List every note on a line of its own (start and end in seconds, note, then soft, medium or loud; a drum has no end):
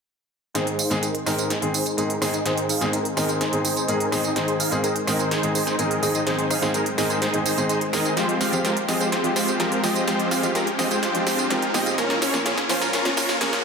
0.55 0.77 G#2 medium
0.55 0.78 D#3 medium
0.55 8.13 D#3 medium
0.55 0.78 G#3 medium
0.55 11.94 G#3 medium
0.55 8.13 C4 medium
0.55 0.78 C4 medium
0.55 0.76 D#4 medium
0.55 0.76 G#4 medium
0.55 8.13 G#4 medium
0.55 0.78 G#4 medium
0.55 0.76 C5 loud
0.55 11.94 C5 medium
0.55 snare soft
0.55 closed hi-hat medium
0.55 tambourine soft
0.55 riser medium
0.67 closed hi-hat soft
0.79 0.98 D#4 medium
0.79 0.98 G#4 medium
0.79 0.98 F5 loud
0.79 open hi-hat loud
0.79 tambourine medium
0.90 1.05 G#2 medium
0.90 1.05 D#3 medium
0.90 1.05 G#3 medium
0.90 1.05 C4 medium
0.90 1.05 G#4 loud
0.90 snare soft
0.90 closed hi-hat soft
0.90 tambourine soft
1.03 1.15 D#4 medium
1.03 1.15 G#4 medium
1.03 1.15 A#4 loud
1.03 closed hi-hat medium
1.03 tambourine soft
1.15 closed hi-hat soft
1.26 1.49 G#2 medium
1.26 1.49 D#3 medium
1.26 1.49 G#3 medium
1.26 1.49 C4 medium
1.26 1.36 D#4 medium
1.26 1.36 G#4 medium
1.26 1.49 A#4 medium
1.26 1.36 D#5 loud
1.26 cross-stick medium
1.26 snare soft
1.26 open hi-hat medium
1.26 tambourine medium
1.38 1.47 D#4 medium
1.38 1.48 G#4 medium
1.38 1.48 C5 loud
1.38 closed hi-hat soft
1.38 tambourine soft
1.50 1.71 D#4 medium
1.50 1.71 G#4 medium
1.50 1.71 C5 medium
1.50 snare soft
1.50 closed hi-hat medium
1.50 tambourine soft
1.62 1.76 G#2 medium
1.62 1.76 D#3 medium
1.62 1.76 G#3 medium
1.62 1.77 C4 medium
1.62 1.77 G#4 medium
1.62 closed hi-hat soft
1.74 1.95 D#4 medium
1.74 1.95 G#4 medium
1.74 1.95 C5 medium
1.74 open hi-hat loud
1.74 tambourine medium
1.86 closed hi-hat soft
1.86 tambourine soft
1.97 2.12 G#2 medium
1.97 2.12 D#3 medium
1.97 2.12 G#3 medium
1.97 2.12 C4 medium
1.97 2.19 D#4 medium
1.97 2.19 G#4 medium
1.97 2.12 G#4 medium
1.97 2.19 A#4 medium
1.97 closed hi-hat medium
1.97 tambourine soft
2.10 closed hi-hat soft
2.21 2.36 G#2 medium
2.21 2.36 D#3 medium
2.21 2.36 G#3 medium
2.21 2.36 C4 medium
2.21 2.32 D#4 medium
2.21 2.32 G#4 medium
2.21 2.36 G#4 loud
2.21 2.32 D#5 loud
2.21 cross-stick medium
2.21 snare medium
2.21 open hi-hat medium
2.21 tambourine medium
2.34 2.43 D#4 medium
2.34 2.43 G#4 medium
2.34 2.43 D#5 medium
2.34 closed hi-hat soft
2.34 tambourine soft
2.45 2.68 G#2 medium
2.45 2.68 D#3 medium
2.45 2.68 G#3 medium
2.45 2.68 C4 medium
2.45 2.67 D#4 medium
2.45 2.67 G#4 medium
2.45 2.69 G#4 medium
2.45 2.67 C5 loud
2.45 snare medium
2.45 closed hi-hat medium
2.45 tambourine soft
2.57 closed hi-hat soft
2.69 2.89 D#4 medium
2.69 2.89 G#4 medium
2.69 2.89 F5 loud
2.69 open hi-hat loud
2.69 tambourine medium
2.81 2.95 G#2 medium
2.81 2.95 D#3 medium
2.81 2.96 G#3 medium
2.81 2.96 C4 medium
2.81 2.96 G#4 loud
2.81 snare soft
2.81 closed hi-hat soft
2.81 tambourine soft
2.93 3.05 D#4 medium
2.93 3.05 G#4 medium
2.93 3.05 A#4 loud
2.93 closed hi-hat medium
2.93 tambourine soft
3.05 closed hi-hat soft
3.16 3.39 G#2 medium
3.16 3.40 D#3 medium
3.16 3.40 G#3 medium
3.16 3.40 C4 medium
3.16 3.26 D#4 loud
3.16 3.26 G#4 medium
3.16 3.40 A#4 medium
3.16 3.26 D#5 loud
3.16 cross-stick medium
3.16 snare medium
3.16 open hi-hat medium
3.16 tambourine medium
3.29 3.38 D#4 medium
3.29 3.38 G#4 medium
3.29 3.38 C5 loud
3.29 closed hi-hat soft
3.29 tambourine soft
3.41 3.62 D#4 medium
3.41 3.62 G#4 medium
3.41 3.62 C5 medium
3.41 snare medium
3.41 closed hi-hat medium
3.41 tambourine soft
3.52 3.67 G#2 medium
3.52 3.67 D#3 medium
3.52 3.67 G#3 medium
3.52 3.67 C4 medium
3.52 3.67 G#4 medium
3.52 closed hi-hat soft
3.65 3.86 D#4 medium
3.65 3.86 G#4 medium
3.65 3.86 C5 medium
3.65 open hi-hat loud
3.65 tambourine medium
3.77 closed hi-hat soft
3.77 tambourine soft
3.88 4.02 G#2 medium
3.88 4.02 D#3 medium
3.88 4.03 G#3 medium
3.88 4.03 C4 medium
3.88 4.09 D#4 medium
3.88 4.09 G#4 medium
3.88 4.03 G#4 medium
3.88 4.09 A#4 medium
3.88 closed hi-hat medium
3.88 tambourine soft
4.00 closed hi-hat soft
4.12 4.26 G#2 medium
4.12 4.26 D#3 medium
4.12 4.26 G#3 medium
4.12 4.27 C4 medium
4.12 4.22 D#4 medium
4.12 4.22 G#4 medium
4.12 4.27 G#4 loud
4.12 4.22 D#5 loud
4.12 cross-stick medium
4.12 snare medium
4.12 open hi-hat medium
4.12 tambourine medium
4.24 4.33 D#4 medium
4.24 4.33 G#4 medium
4.24 4.33 D#5 medium
4.24 closed hi-hat soft
4.24 tambourine soft
4.35 4.58 G#2 medium
4.35 4.59 D#3 medium
4.35 4.59 G#3 medium
4.35 4.59 C4 medium
4.35 4.57 D#4 medium
4.35 4.57 G#4 medium
4.35 4.59 G#4 medium
4.35 4.57 C5 loud
4.35 snare medium
4.35 closed hi-hat medium
4.35 tambourine soft
4.48 closed hi-hat soft
4.60 4.79 D#4 medium
4.60 4.79 G#4 medium
4.60 4.79 F5 loud
4.60 open hi-hat loud
4.60 tambourine medium
4.71 4.86 G#2 medium
4.71 4.86 D#3 medium
4.71 4.86 G#3 medium
4.71 4.86 C4 medium
4.71 4.86 G#4 loud
4.71 closed hi-hat soft
4.71 tambourine soft
4.84 4.96 D#4 medium
4.84 4.96 G#4 medium
4.84 4.96 A#4 loud
4.84 closed hi-hat medium
4.84 tambourine soft
4.96 closed hi-hat soft
5.07 5.30 G#2 medium
5.07 5.30 D#3 medium
5.07 5.30 G#3 medium
5.07 5.30 C4 medium
5.07 5.17 D#4 loud
5.07 5.17 G#4 medium
5.07 5.30 A#4 medium
5.07 5.17 D#5 loud
5.07 cross-stick medium
5.07 snare medium
5.07 open hi-hat loud
5.07 tambourine medium
5.19 5.28 D#4 medium
5.19 5.28 G#4 medium
5.19 5.28 C5 loud
5.19 closed hi-hat soft
5.19 tambourine soft
5.31 5.52 D#4 medium
5.31 5.52 G#4 medium
5.31 5.52 C5 medium
5.31 snare medium
5.31 closed hi-hat medium
5.31 tambourine soft
5.43 5.57 G#2 medium
5.43 5.57 D#3 medium
5.43 5.57 G#3 medium
5.43 5.58 C4 medium
5.43 5.58 G#4 medium
5.43 closed hi-hat soft
5.55 5.76 D#4 medium
5.55 5.76 G#4 medium
5.55 5.76 C5 medium
5.55 open hi-hat loud
5.55 tambourine medium
5.67 snare medium
5.67 closed hi-hat soft
5.67 tambourine soft
5.78 5.93 G#2 medium
5.78 5.93 D#3 medium
5.78 5.93 G#3 medium
5.78 5.93 C4 medium
5.78 6.00 D#4 medium
5.78 6.00 G#4 medium
5.78 5.93 G#4 medium
5.78 6.00 A#4 medium
5.78 closed hi-hat medium
5.78 tambourine soft
5.91 closed hi-hat soft
6.02 6.17 G#2 medium
6.02 6.17 D#3 medium
6.02 6.17 G#3 medium
6.02 6.17 C4 medium
6.02 6.13 D#4 medium
6.02 6.13 G#4 medium
6.02 6.17 G#4 loud
6.02 6.13 D#5 loud
6.02 open hi-hat medium
6.02 tambourine medium
6.15 6.24 D#4 medium
6.15 6.24 G#4 medium
6.15 6.24 D#5 medium
6.15 closed hi-hat soft
6.15 tambourine soft
6.26 6.49 G#2 medium
6.26 6.49 D#3 medium
6.26 6.49 G#3 medium
6.26 6.49 C4 medium
6.26 6.48 D#4 medium
6.26 6.48 G#4 medium
6.26 6.49 G#4 medium
6.26 6.48 C5 loud
6.26 snare medium
6.26 closed hi-hat medium
6.26 tambourine soft
6.39 closed hi-hat soft
6.50 6.70 D#4 medium
6.50 6.70 G#4 medium
6.50 6.70 F5 loud
6.50 cross-stick medium
6.50 open hi-hat loud
6.50 tambourine medium
6.62 6.76 G#2 medium
6.62 6.76 D#3 medium
6.62 6.76 G#3 medium
6.62 6.77 C4 medium
6.62 6.77 G#4 loud
6.62 snare medium
6.62 closed hi-hat soft
6.62 tambourine soft
6.74 6.86 D#4 medium
6.74 6.86 G#4 medium
6.74 6.86 A#4 loud
6.74 closed hi-hat medium
6.74 tambourine soft
6.86 closed hi-hat soft
6.97 7.20 G#2 medium
6.97 7.20 D#3 medium
6.97 7.21 G#3 medium
6.97 7.21 C4 medium
6.97 7.07 D#4 loud
6.97 7.07 G#4 medium
6.97 7.21 A#4 medium
6.97 7.07 D#5 loud
6.97 cross-stick medium
6.97 snare medium
6.97 open hi-hat medium
6.97 tambourine medium
7.10 7.19 D#4 medium
7.10 7.19 G#4 medium
7.10 7.19 C5 loud
7.10 closed hi-hat soft
7.10 tambourine soft
7.22 7.43 D#4 medium
7.22 7.43 G#4 medium
7.22 7.43 C5 medium
7.22 snare medium
7.22 closed hi-hat medium
7.22 tambourine soft
7.33 7.48 G#2 medium
7.33 7.48 D#3 medium
7.33 7.48 G#3 medium
7.33 7.48 C4 medium
7.33 7.48 G#4 medium
7.33 closed hi-hat soft
7.45 7.65 D#4 medium
7.45 7.65 G#4 medium
7.45 7.65 C5 loud
7.45 open hi-hat loud
7.45 tambourine medium
7.57 7.71 G#2 medium
7.57 7.72 D#3 medium
7.57 7.72 G#3 medium
7.57 7.72 C4 medium
7.57 7.72 G#4 loud
7.57 closed hi-hat soft
7.57 tambourine soft
7.69 7.81 D#4 medium
7.69 7.81 G#4 medium
7.69 7.81 C5 medium
7.69 closed hi-hat medium
7.69 tambourine soft
7.81 closed hi-hat soft
7.93 8.13 D#3 medium
7.93 8.13 G#3 medium
7.93 8.14 C4 medium
7.93 8.14 D#4 medium
7.93 8.14 G#4 medium
7.93 8.14 A#4 medium
7.93 8.14 D#5 medium
7.93 cross-stick medium
7.93 snare medium
7.93 open hi-hat medium
7.93 tambourine medium
8.05 closed hi-hat soft
8.05 tambourine soft
8.16 8.39 F3 medium
8.16 13.64 F3 medium
8.16 8.40 G#3 medium
8.16 8.38 G#3 medium
8.16 8.38 C4 medium
8.16 8.40 C4 medium
8.16 11.94 C4 medium
8.16 8.38 F4 medium
8.16 8.38 G4 medium
8.16 10.06 G4 medium
8.16 8.40 G4 medium
8.16 8.38 C5 loud
8.16 snare medium
8.16 closed hi-hat medium
8.16 tambourine soft
8.29 closed hi-hat soft
8.41 8.60 G#3 medium
8.41 8.60 C4 medium
8.41 8.60 F4 medium
8.41 8.60 G4 medium
8.41 8.60 F5 loud
8.41 snare medium
8.41 open hi-hat loud
8.41 tambourine medium
8.52 8.67 F3 medium
8.52 8.67 G#3 medium
8.52 8.67 C4 medium
8.52 8.67 G4 loud
8.52 closed hi-hat soft
8.52 tambourine soft
8.65 8.77 G#3 loud
8.65 8.77 C4 medium
8.65 8.77 F4 medium
8.65 8.77 G4 medium
8.65 8.77 A#4 loud
8.65 snare medium
8.65 closed hi-hat medium
8.65 tambourine soft
8.77 closed hi-hat soft
8.88 9.11 F3 medium
8.88 9.11 G#3 medium
8.88 8.97 G#3 loud
8.88 8.97 C4 medium
8.88 9.11 C4 medium
8.88 8.97 F4 medium
8.88 8.97 G4 medium
8.88 9.11 G#4 medium
8.88 8.97 D#5 loud
8.88 snare medium
8.88 open hi-hat medium
8.88 tambourine medium
9.00 9.09 G#3 medium
9.00 9.09 C4 medium
9.00 9.09 F4 medium
9.00 9.09 G4 medium
9.00 9.09 C5 loud
9.00 closed hi-hat soft
9.00 tambourine soft
9.12 9.33 G#3 medium
9.12 9.33 C4 medium
9.12 9.33 F4 medium
9.12 9.33 G4 medium
9.12 9.33 C5 medium
9.12 snare medium
9.12 closed hi-hat medium
9.12 tambourine soft
9.24 9.38 F3 medium
9.24 9.38 G#3 medium
9.24 9.38 C4 medium
9.24 9.39 G4 medium
9.24 closed hi-hat soft
9.36 9.57 G#3 medium
9.36 9.57 C4 medium
9.36 9.57 F4 medium
9.36 9.57 G4 medium
9.36 9.57 C5 medium
9.36 snare medium
9.36 open hi-hat loud
9.36 tambourine medium
9.48 closed hi-hat soft
9.48 tambourine soft
9.59 9.74 F3 medium
9.59 9.74 G#3 medium
9.59 9.81 G#3 medium
9.59 9.81 C4 medium
9.59 9.74 C4 medium
9.59 9.81 F4 medium
9.59 9.81 G4 medium
9.59 9.74 G4 medium
9.59 9.81 A#4 medium
9.59 snare medium
9.59 closed hi-hat medium
9.59 tambourine soft
9.72 closed hi-hat soft
9.83 9.98 F3 medium
9.83 9.98 G#3 medium
9.83 9.94 G#3 medium
9.83 9.94 C4 medium
9.83 9.98 C4 medium
9.83 9.94 F4 medium
9.83 9.94 G4 medium
9.83 9.98 G4 loud
9.83 9.94 D#5 loud
9.83 snare medium
9.83 open hi-hat medium
9.83 tambourine medium
9.96 10.05 G#3 medium
9.96 10.05 C4 medium
9.96 10.05 F4 medium
9.96 10.05 G4 medium
9.96 10.05 D#5 medium
9.96 closed hi-hat soft
9.96 tambourine soft
10.07 10.30 F3 medium
10.07 10.30 G#3 medium
10.07 10.28 G#3 loud
10.07 10.28 C4 medium
10.07 10.30 C4 medium
10.07 10.28 F4 medium
10.07 11.96 F4 medium
10.07 10.28 G4 medium
10.07 10.31 G4 medium
10.07 10.28 C5 loud
10.07 snare medium
10.07 closed hi-hat medium
10.07 tambourine soft
10.20 closed hi-hat soft
10.31 10.51 G#3 medium
10.31 10.51 C4 medium
10.31 10.51 F4 medium
10.31 10.51 G4 medium
10.31 10.51 F5 loud
10.31 snare medium
10.31 open hi-hat loud
10.31 tambourine medium
10.43 10.57 F3 medium
10.43 10.57 G#3 medium
10.43 10.58 C4 medium
10.43 10.58 G4 loud
10.43 closed hi-hat soft
10.43 tambourine soft
10.55 10.67 G#3 medium
10.55 10.67 C4 medium
10.55 10.67 F4 medium
10.55 10.67 G4 medium
10.55 10.67 A#4 loud
10.55 snare medium
10.55 closed hi-hat medium
10.55 tambourine soft
10.67 closed hi-hat soft
10.78 11.01 F3 medium
10.78 11.01 G#3 medium
10.78 10.88 G#3 loud
10.78 10.88 C4 medium
10.78 11.02 C4 medium
10.78 10.88 F4 medium
10.78 10.88 G4 medium
10.78 11.02 G#4 loud
10.78 10.88 D#5 loud
10.78 snare medium
10.78 open hi-hat medium
10.78 tambourine medium
10.91 11.00 G#3 medium
10.91 11.00 C4 medium
10.91 11.00 F4 medium
10.91 11.00 G4 medium
10.91 11.00 C5 loud
10.91 closed hi-hat soft
10.91 tambourine soft
11.03 11.24 G#3 medium
11.03 11.24 C4 medium
11.03 11.24 F4 medium
11.03 11.24 G4 medium
11.03 11.24 C5 medium
11.03 snare medium
11.03 closed hi-hat medium
11.03 tambourine soft
11.14 11.29 F3 medium
11.14 11.29 G#3 medium
11.14 11.29 C4 medium
11.14 11.29 G4 medium
11.14 closed hi-hat soft
11.27 11.48 G#3 medium
11.27 11.48 C4 medium
11.27 11.48 F4 medium
11.27 11.48 G4 medium
11.27 11.48 C5 medium
11.27 snare medium
11.27 open hi-hat loud
11.27 tambourine medium
11.38 closed hi-hat soft
11.38 tambourine soft
11.50 11.64 F3 medium
11.50 11.64 G#3 medium
11.50 11.71 G#3 medium
11.50 11.71 C4 medium
11.50 11.65 C4 medium
11.50 11.71 F4 medium
11.50 11.71 G4 medium
11.50 11.65 G4 medium
11.50 11.71 A#4 medium
11.50 snare medium
11.50 closed hi-hat medium
11.50 tambourine soft
11.62 closed hi-hat soft
11.74 11.88 A#2 medium
11.74 11.88 F3 medium
11.74 11.84 G#3 loud
11.74 11.88 G#3 medium
11.74 11.84 C4 medium
11.74 11.89 C4 medium
11.74 11.84 F4 medium
11.74 11.84 G4 medium
11.74 11.89 G4 loud
11.74 11.84 D#5 loud
11.74 snare medium
11.74 open hi-hat medium
11.74 tambourine medium
11.86 11.95 G#3 medium
11.86 11.95 C4 medium
11.86 11.95 F4 medium
11.86 11.95 G4 medium
11.86 11.95 D#5 medium
11.86 closed hi-hat soft
11.86 tambourine soft
11.97 12.20 A#2 medium
11.97 12.21 F3 medium
11.97 13.64 A#3 medium
11.97 12.21 A#3 medium
11.97 13.64 C#4 medium
11.97 12.19 C#4 loud
11.97 12.21 C#4 medium
11.97 12.19 F4 medium
11.97 13.64 A#4 medium
11.97 12.19 A#4 loud
11.97 12.21 A#4 medium
11.97 13.64 C#5 medium
11.97 snare medium
11.97 closed hi-hat medium
11.97 tambourine soft
12.10 snare medium
12.10 closed hi-hat soft
12.22 12.41 C#4 medium
12.22 12.41 F4 medium
12.22 12.41 C#5 loud
12.22 snare medium
12.22 open hi-hat loud
12.22 tambourine medium
12.33 12.48 A#2 loud
12.33 12.48 F3 medium
12.33 12.48 A#3 medium
12.33 12.48 C#4 medium
12.33 12.48 A#4 loud
12.33 snare medium
12.33 closed hi-hat soft
12.33 tambourine soft
12.46 12.58 C#4 medium
12.46 12.58 F4 medium
12.46 12.58 G#4 loud
12.46 snare loud
12.46 closed hi-hat medium
12.46 tambourine soft
12.58 snare medium
12.58 closed hi-hat soft
12.69 12.92 A#2 medium
12.69 12.92 F3 medium
12.69 12.92 A#3 medium
12.69 12.78 C#4 loud
12.69 12.92 C#4 medium
12.69 12.78 F4 medium
12.69 12.78 C5 loud
12.69 12.92 C5 medium
12.69 snare loud
12.69 open hi-hat medium
12.69 tambourine medium
12.81 12.90 C#4 medium
12.81 12.90 F4 medium
12.81 12.90 A#4 loud
12.81 snare medium
12.81 closed hi-hat soft
12.81 tambourine soft
12.93 13.14 C#4 medium
12.93 13.14 F4 medium
12.93 13.14 A#4 medium
12.93 snare loud
12.93 closed hi-hat medium
12.93 tambourine soft
13.04 13.19 A#2 medium
13.04 13.19 F3 medium
13.04 13.19 A#3 medium
13.04 13.19 C#4 medium
13.04 13.20 A#4 medium
13.04 snare medium
13.04 closed hi-hat soft
13.17 13.38 C#4 medium
13.17 13.38 F4 medium
13.17 13.38 A#4 loud
13.17 snare loud
13.17 open hi-hat loud
13.17 tambourine medium
13.29 snare medium
13.29 closed hi-hat soft
13.29 tambourine soft
13.40 13.55 A#2 medium
13.40 13.55 F3 medium
13.40 13.55 A#3 medium
13.40 13.62 C#4 medium
13.40 13.55 C#4 medium
13.40 13.62 F4 medium
13.40 13.62 G#4 medium
13.40 13.55 A#4 medium
13.40 snare loud
13.40 closed hi-hat medium
13.40 tambourine soft
13.53 snare medium
13.53 closed hi-hat soft